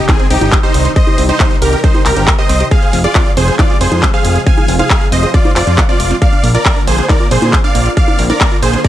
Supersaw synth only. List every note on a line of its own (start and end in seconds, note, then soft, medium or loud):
0.09 0.27 C4 medium
0.09 0.27 G#4 medium
0.31 0.57 D#4 medium
0.31 0.57 G4 loud
0.64 0.90 D#4 medium
0.64 0.90 C5 loud
0.96 1.23 C5 medium
0.96 1.23 D#5 loud
1.29 1.56 D#4 medium
1.29 1.56 C5 loud
1.62 1.80 G4 medium
1.62 1.80 A#4 medium
1.84 2.02 D#4 medium
1.84 2.02 C5 medium
2.06 2.33 G4 medium
2.06 2.33 A#4 medium
2.39 2.65 C5 medium
2.39 2.65 D#5 loud
2.71 2.98 G#4 medium
2.71 2.98 F5 loud
3.04 3.31 F4 medium
3.04 3.31 D5 loud
3.37 3.55 G#4 medium
3.37 3.55 C5 medium
3.59 3.77 F4 medium
3.59 3.77 D5 medium
3.81 4.08 G#4 medium
3.81 4.08 C5 loud
4.14 4.41 G#4 medium
4.14 4.41 F5 loud
4.46 4.73 F5 medium
4.46 4.73 G#5 loud
4.79 5.06 G#4 medium
4.79 5.06 F5 loud
5.12 5.30 C5 medium
5.12 5.30 D#5 medium
5.34 5.52 F4 medium
5.34 5.52 D5 medium
5.56 5.83 F4 medium
5.56 5.83 D5 medium
5.89 6.16 F4 medium
5.89 6.16 D5 loud
6.22 6.49 D5 medium
6.22 6.49 F5 loud
6.55 6.81 A#4 medium
6.55 6.81 D5 loud
6.87 7.05 G#4 medium
6.87 7.05 C5 medium
7.09 7.27 A#4 medium
7.09 7.27 D5 medium
7.31 7.58 G#4 medium
7.31 7.58 C5 medium
7.64 7.91 D5 medium
7.64 7.91 F5 loud
7.97 8.24 D5 medium
7.97 8.24 F5 loud
8.30 8.57 A#4 medium
8.30 8.57 D5 medium
8.63 8.81 G#4 medium
8.63 8.81 C5 medium
8.85 8.88 A#4 medium
8.85 8.88 D5 medium